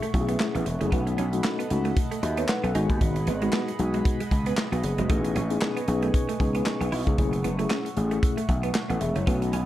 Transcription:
Already playing: A3 E5 F#5 C#6
0.02 A3, closed hi-hat
0.14 B1 A3 C#4 E4 F#4, muted clean electric guitar stroke, kick, closed hi-hat
0.21 G#4
0.29 B3, closed hi-hat
0.40 snare, clap
0.55 A1 B3, closed hi-hat
0.66 E1, muted clean electric guitar stroke, closed hi-hat
0.81 F#1 A3 C#4 E4 G#4, closed hi-hat
0.92 B1 A3 B3 C#4 D#4 F#4 A4 D#5 B5, kick, closed hi-hat
1.07 muted clean electric guitar stroke, closed hi-hat
1.18 B1 C#4, closed hi-hat
1.33 A3 C#4 D#4 F#4, closed hi-hat
1.44 snare, clap
1.59 B3, closed hi-hat
1.70 C#2 A3 C#4 D#4 F#4, muted clean electric guitar stroke, closed hi-hat
1.85 A3, closed hi-hat
1.97 kick, closed hi-hat
2.11 A3, closed hi-hat
2.23 D#2 F#4 D#5 E5, muted clean electric guitar stroke, closed hi-hat
2.37 B3 C#5, closed hi-hat
2.48 D#4 B4 F#5, muted clean electric guitar stroke, snare, clap
2.64 B1 B3 C#4 A4, closed hi-hat
2.75 G#1 G#3 B3 D#4 F#4 G#4 D#5 G#5 B5, closed hi-hat
2.90 D#2, kick, closed hi-hat
3.01 G#1, kick, closed hi-hat
3.16 muted clean electric guitar stroke, closed hi-hat
3.27 G#1 B3, closed hi-hat
3.41 G#3 B3 D#4 F#4, closed hi-hat
3.52 B3, snare, clap
3.68 muted clean electric guitar stroke, closed hi-hat
3.79 B1 G#3 B3 D#4 F#4, closed hi-hat
3.94 G#3, closed hi-hat
4.05 kick, closed hi-hat
4.20 G#3, closed hi-hat
4.31 C#2, muted clean electric guitar stroke, kick, closed hi-hat
4.46 B3, closed hi-hat
4.57 snare, clap
4.72 B1 B3 F#4, closed hi-hat
4.83 F#1 B3 G#4, muted clean electric guitar stroke, closed hi-hat
4.98 E1 G#3 F#4, closed hi-hat
5.09 A1 A3 B3 C#4 D#4 G#4 B4 G#5 C#6, kick, closed hi-hat
5.24 muted clean electric guitar stroke, closed hi-hat
5.36 A1 C#4, closed hi-hat
5.50 B3 C#4 D#4 G#4, closed hi-hat
5.61 snare, clap
5.77 B3, closed hi-hat
5.87 B1 B3 C#4 D#4 G#4, muted clean electric guitar stroke, closed hi-hat
6.02 A3, closed hi-hat
6.14 kick, closed hi-hat
6.29 A3, closed hi-hat
6.40 C#2 B3 C#4 D#4 G#4, muted clean electric guitar stroke, kick, closed hi-hat
6.55 B3, closed hi-hat
6.66 muted clean electric guitar stroke, snare, clap
6.81 B1 B3, closed hi-hat
6.92 B1 E4, open hi-hat
7.07 C#2 B3 C#4 D#4 G#4, kick, closed hi-hat
7.18 F#1 A3 C#4 E4 G#4 E5 F#5, kick, closed hi-hat
7.33 muted clean electric guitar stroke, closed hi-hat
7.44 F#1 B3, closed hi-hat
7.59 A3 C#4 E4 G#4, closed hi-hat
7.70 C#4, snare, clap
7.85 muted clean electric guitar stroke, closed hi-hat
7.96 A1 A3 C#4 E4 G#4, closed hi-hat
8.11 A3, closed hi-hat
8.23 kick, closed hi-hat
8.37 A3, closed hi-hat
8.49 B1, muted clean electric guitar stroke, kick, closed hi-hat
8.63 B3, closed hi-hat
8.74 snare, clap
8.90 A1 B3 A4 F#5, closed hi-hat
9.01 E1 G#4 E5, muted clean electric guitar stroke, closed hi-hat
9.16 F#1 A3 E4 C#5, closed hi-hat
9.27 B1 A3 B3 C#4 D#4 F#4 D#5 F#5 B5, kick, closed hi-hat
9.42 muted clean electric guitar stroke, closed hi-hat
9.53 B1 C#4, closed hi-hat

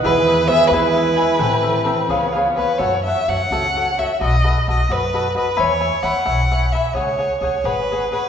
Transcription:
Already playing: B3 C#4 B4 F#5
0.02 E2 E3 E4 G#4 B4 E5 G#5
0.07 G#3 E4
0.27 G#4 B4 E5 G#5
0.47 B3 G#4 E5
0.52 B4 E5 G#5
0.67 E2 E4 B4
0.72 G#4 B4 E5 G#5
0.94 G#4 B4 E5 G#5
1.16 G#4 B4 E5 G#5
1.38 A1 E3 A3 C4 G4 A4 C5 E5 G5
1.63 A4 C5 E5 G5
1.84 C4 A4 C5 E5 G5
2.08 C#2 B3 F4 G#4 B4 C#5 F5
2.32 G#4 C#5 F5
2.37 B4 F5
2.56 G#4 B4 C#5 F5 B5
2.78 F#2 F#4 A4 C#5 F#5
3.04 F#4 A4 E5
3.08 C#5 F#5
3.28 F#2 F#4 A4 C#5 F#5
3.51 C#2 F#4 A4 C#5 F#5
3.76 F#4 A4 C#5 F#5
3.98 F#4 A4 C#5 E5 F#5
4.20 B1 F#4 A4 B4 D#5
4.44 F#4 A4 B4 D#5
4.68 B1 F#4 A4 B4 D#5
4.89 F#2 F#4 A4 B4 D#5
5.14 F#4 A4 B4 D#5
5.35 F#4 A4 B4 D#5
5.57 E2 C#5 E5 G#5 B5
5.80 C#5 E5 G#5 B5
6.02 E2 C#5 E5 F#5 G#5 B5
6.25 B1 C#5 E5 G#5 B5
6.51 C#5 E5 G#5 B5
6.72 C#5 E5 G#5 B5
6.93 C#2 G#4 C#5 F#5 G#5
7.18 G#4 C#5 F#5 G#5
7.40 C#2 G#4 C#5 F#5
7.44 G#5
7.64 G#1 G#4 B4 C#5 F#5 G#5
7.92 G#4 C#5 F#5 G#5
8.12 G#4 B4 C#5 F#5 G#5

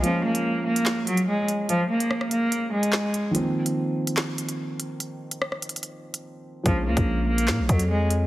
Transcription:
0.01 F3 G#3 A#3, closed hi-hat
0.06 C#4
0.25 A#3
0.35 closed hi-hat
0.66 A#3
0.76 closed hi-hat
0.86 snare, clap, closed hi-hat
1.07 F#3, closed hi-hat
1.17 closed hi-hat
1.28 G#3
1.48 closed hi-hat
1.69 F3, closed hi-hat
1.90 A#3
2.00 closed hi-hat
2.11 cross-stick
2.21 cross-stick
2.31 A#3, closed hi-hat
2.52 closed hi-hat
2.73 G#3
2.83 closed hi-hat
2.93 snare, clap
3.14 closed hi-hat
3.31 D#3 F3 A#3, closed hi-hat
3.36 C4
3.66 closed hi-hat
4.07 closed hi-hat
4.17 snare, clap, closed hi-hat
4.38 closed hi-hat
4.49 closed hi-hat
4.80 closed hi-hat
5.00 closed hi-hat
5.31 closed hi-hat
5.42 cross-stick
5.52 cross-stick
5.62 closed hi-hat
5.69 closed hi-hat
5.76 closed hi-hat
5.83 closed hi-hat
6.14 closed hi-hat
6.63 A#1 F3 G#3 A#3, kick, closed hi-hat
6.68 C#4
6.86 C#2 A#3
6.97 A#1, kick, closed hi-hat
7.28 A#3
7.38 closed hi-hat
7.48 A#2, snare, clap, closed hi-hat
7.59 A#1
7.69 F2 F#3, kick, closed hi-hat
7.79 closed hi-hat
7.90 G#3
8.11 closed hi-hat

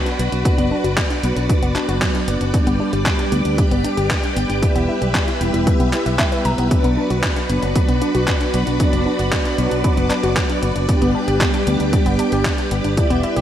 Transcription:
Already playing: F#3 B3 D4 F#4 B4 D5
0.06 D4, closed hi-hat
0.19 B1 B3, closed hi-hat
0.32 B1 D4, closed hi-hat
0.45 F#3 B3 D4 D5, kick, closed hi-hat
0.58 F#1 B3, closed hi-hat
0.71 D4
0.84 F#1 F#4, closed hi-hat
0.97 kick, clap, closed hi-hat
1.10 D4, closed hi-hat
1.23 B1 F#3 B3 D4 B4, closed hi-hat
1.36 B1 D4, closed hi-hat
1.49 kick, closed hi-hat
1.62 F#1 B3, closed hi-hat
1.75 D4, clap, closed hi-hat
1.88 F#1 F#4, closed hi-hat
2.02 kick, clap, closed hi-hat
2.14 D4, closed hi-hat
2.28 F#1 B3, closed hi-hat
2.41 F#1 D4, closed hi-hat
2.54 G3 B3 D4 G4 B4 D6, kick, closed hi-hat
2.67 G1 B3, closed hi-hat
2.80 D4
2.93 G1 G4, closed hi-hat
3.06 kick, clap, closed hi-hat
3.19 D4, closed hi-hat
3.32 D2 G3 B3 D4 B4, closed hi-hat
3.45 D2 D4, closed hi-hat
3.58 kick, closed hi-hat
3.71 G1 B3, closed hi-hat
3.84 D4, closed hi-hat
3.97 G1 G4, closed hi-hat
4.10 kick, clap, closed hi-hat
4.23 D4, closed hi-hat
4.36 G1 B3, closed hi-hat
4.49 G1 D4, closed hi-hat
4.62 G3 B3 E4 D5 E5, kick, closed hi-hat
4.75 E1 B3, closed hi-hat
4.89 E4
5.01 B1 G4, closed hi-hat
5.15 kick, clap, closed hi-hat
5.28 E4, closed hi-hat
5.41 E1 G3 B3 E4 B4, closed hi-hat
5.54 E1 E4, closed hi-hat
5.67 kick, closed hi-hat
5.80 B1 B3, closed hi-hat
5.93 E4, clap, closed hi-hat
6.06 B1 E5, closed hi-hat
6.19 E5, kick, clap, closed hi-hat
6.32 B4, closed hi-hat
6.45 B1 A#5, closed hi-hat
6.58 B1 B3, closed hi-hat
6.71 F#3 B3 D4 F#4 B4 D5, kick, closed hi-hat
6.84 B1 B3, closed hi-hat
6.97 D4
7.10 B1 F#4, closed hi-hat
7.23 kick, clap, closed hi-hat
7.36 D4, closed hi-hat
7.49 F#1 F#3 B3 D4 B4, closed hi-hat
7.62 F#1 D4, closed hi-hat
7.75 kick, closed hi-hat
7.89 B1 B3, closed hi-hat
8.02 D4, closed hi-hat
8.15 B1 F#4, closed hi-hat
8.28 kick, clap, closed hi-hat
8.41 D4, closed hi-hat
8.54 B1 B3, closed hi-hat
8.67 B1 D4, closed hi-hat
8.80 F#3 B3 D4 D5, kick, closed hi-hat
8.93 F#1 B3, closed hi-hat
9.06 D4
9.19 F#1 F#4, closed hi-hat
9.32 kick, clap, closed hi-hat
9.45 D4, closed hi-hat
9.58 B1 F#3 B3 D4 B4, closed hi-hat
9.71 B1 D4, closed hi-hat
9.84 kick, closed hi-hat
9.97 F#1 B3, closed hi-hat
10.10 D4, clap, closed hi-hat
10.23 F#1 F#4, closed hi-hat
10.36 kick, clap, closed hi-hat
10.49 D4, closed hi-hat
10.62 F#1 B3, closed hi-hat
10.76 F#1 D4, closed hi-hat
10.89 G3 B3 D4 G4 B4 D6, kick, closed hi-hat
11.02 G1 B3, closed hi-hat
11.15 D4
11.28 G1 G4, closed hi-hat
11.41 kick, clap, closed hi-hat
11.54 D4, closed hi-hat
11.67 D2 G3 B3 D4 B4, closed hi-hat
11.80 D2 D4, closed hi-hat
11.93 kick, closed hi-hat
12.06 G1 B3, closed hi-hat
12.19 D4, closed hi-hat
12.32 G1 G4, closed hi-hat
12.45 kick, clap, closed hi-hat
12.58 D4, closed hi-hat
12.71 G1 B3, closed hi-hat
12.84 G1 D4, closed hi-hat
12.97 G3 B3 E4 B4 D5 E5, kick, closed hi-hat
13.10 E1 B3, closed hi-hat
13.23 E4, closed hi-hat
13.36 B1 G4, closed hi-hat

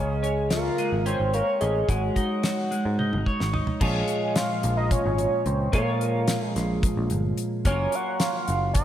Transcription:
Already playing: C#2 C#3 C#4 G#4 D#5
0.23 C#4, closed hi-hat
0.50 F4 A#4 F5, snare, closed hi-hat
0.78 G#3, closed hi-hat
0.92 G#1
1.06 C#4 C5 G5, closed hi-hat
1.20 G#1
1.34 A#4 C#5 F5, closed hi-hat
1.60 A1 C#4 G#4 D#5, closed hi-hat
1.89 G#1 G#3 F#4 C#5, kick, closed hi-hat
2.16 D#4, kick, closed hi-hat
2.43 F#4, snare, closed hi-hat
2.71 G#3, closed hi-hat
2.85 G#2
2.99 D#4, high tom
3.13 G#1, high tom
3.26 C#5, kick
3.40 G#1, snare
3.53 D#4, floor tom
3.67 floor tom
3.80 A#1 A#2 F3 G#3 C#4 F4 G#4 C#5 D#5, kick, crash
4.08 closed hi-hat
4.36 F5 C6, snare, closed hi-hat
4.63 A#1, closed hi-hat
4.77 D#5 A#5
4.91 C#5 G#5, kick, closed hi-hat
5.06 G#1
5.18 closed hi-hat
5.46 C#2 C5 G5, closed hi-hat
5.72 A#2 F3 G#3 C#4 F4 A#4 C#5 F5, kick, closed hi-hat
6.01 closed hi-hat
6.28 snare, closed hi-hat
6.47 G#4 D#5
6.56 A#1, snare, closed hi-hat
6.83 kick, closed hi-hat
6.97 A#1
7.10 G1, closed hi-hat
7.38 closed hi-hat
7.65 F#1 F#3 A#3 C#4 F4 A#4 C#5 G#5, kick, closed hi-hat
7.92 F#5 C#6, closed hi-hat
8.20 F5 C6, snare, closed hi-hat
8.48 F#1, closed hi-hat
8.74 D#5 A#5, kick, closed hi-hat

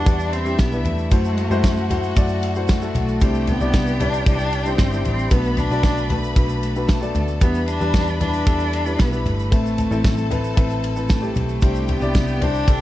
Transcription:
Already playing: E3 G3 D4 E4 F#4 B4 D5 F#5
0.05 E2 G3 D4 E4 B4, kick, ride, shaker
0.19 shaker
0.33 C4 E4 E5, ride, shaker
0.45 G3 D4 E4 G4, shaker
0.59 B1 B3, kick, snare, ride, shaker
0.72 G3 D4 E4 B4, shaker
0.85 E2 A3, floor tom, ride, shaker
0.98 shaker
1.11 F#2 A3 E4 F#4 C5 F#5, kick, ride, shaker
1.24 shaker
1.38 ride, shaker
1.50 F#2 A3 E4 F#4 C5, shaker
1.64 F#2, kick, snare, ride, shaker
1.77 shaker
1.90 A3 E4 F#4 C5, floor tom, ride, shaker
2.03 shaker
2.16 F#2 A3 E4 F#4 D5, kick, ride, shaker
2.29 shaker
2.43 ride, shaker
2.55 A3 E4 F#4 C5, shaker
2.68 A3, kick, snare, ride, shaker
2.82 A3 E4 F#4 A4, shaker
2.95 B1 A3, floor tom, ride, shaker
3.08 shaker
3.21 C2 C3 G3 D4 E4 G4 C5 G5, kick, ride, shaker
3.35 shaker
3.47 B3, floor tom, ride, shaker
3.60 C2 G3 D4 E4 D5, shaker
3.73 C2, kick, snare, ride, shaker
3.86 shaker
4.00 G3 D4 E4 B4, floor tom, ride, shaker
4.13 shaker
4.26 C2 G3 D4 E4 D5, kick, ride, shaker
4.39 shaker
4.53 ride, shaker
4.65 G3 C4 D4 E4 C5, shaker
4.78 G1, kick, snare, ride, shaker
4.92 G3 D4 E4 C5, shaker
5.05 A1 C4, floor tom, ride, shaker
5.19 shaker
5.31 B1 B2 A3 B3 D4 F#4 B4 B5, kick, ride, shaker
5.45 shaker
5.57 D4, floor tom, ride, shaker
5.71 B1 A3 D4 F#4 D5, shaker
5.83 B1, kick, snare, ride, shaker
5.97 shaker
6.10 A3 D4 F#4 B4, floor tom, ride, shaker
6.24 shaker
6.36 B1 A3 D4 F#4 B4, kick, ride, shaker
6.49 shaker
6.63 ride, shaker
6.76 A3 D4 F#4 B4, shaker
6.89 A3 A4 A5, kick, snare, ride, shaker
7.02 A3 D4 F#4 D5, shaker
7.15 D2 A3, floor tom, ride, shaker
7.28 shaker
7.41 E2 E3 G3 B3 D4 E4 B4 B5, kick, ride, shaker
7.55 shaker
7.68 D4, ride, shaker
7.80 E2 G3 D4 E4 B4, shaker
7.94 E2, kick, snare, ride, shaker
8.07 shaker
8.20 G3 D4 E4 B4, floor tom, ride, shaker
8.33 shaker
8.46 E2 G3 D4 E4 A4, kick, ride, shaker
8.60 shaker
8.73 ride, shaker
8.86 G3 D4 E4 B4, shaker
8.99 B1 B3, kick, snare, ride, shaker
9.12 G3 D4 E4 B4, shaker
9.25 G1 A3, floor tom, ride, shaker
9.39 shaker
9.51 A1 A2 A3 C4 E4 A4 B4 A5, kick, ride, shaker
9.66 shaker
9.78 floor tom, ride, shaker
9.91 A1 A3 C4 E4 A4, shaker
10.04 A1, kick, snare, ride, shaker
10.17 shaker
10.31 A3 C4 E4 B4, floor tom, ride, shaker
10.44 shaker
10.57 A1 A3 C4 E4 B4, kick, ride, shaker
10.70 shaker
10.84 ride, shaker
10.96 A3 C4 E4 B4, shaker
11.09 A3, kick, snare, ride, shaker
11.22 A3 C4 E4 G4, shaker
11.35 B1 A3, floor tom, ride, shaker
11.49 shaker
11.61 C2 C3 G3 D4 E4 G4 C5 G5, kick, ride, shaker
11.75 shaker
11.88 B3, floor tom, ride, shaker
12.02 C2 G3 D4 E4 D5, shaker
12.14 C2, kick, snare, ride, shaker
12.27 shaker
12.41 G3 D4 E4 C5, floor tom, ride, shaker
12.54 shaker
12.67 C2 G3 D4 E4 A4, kick, ride, shaker

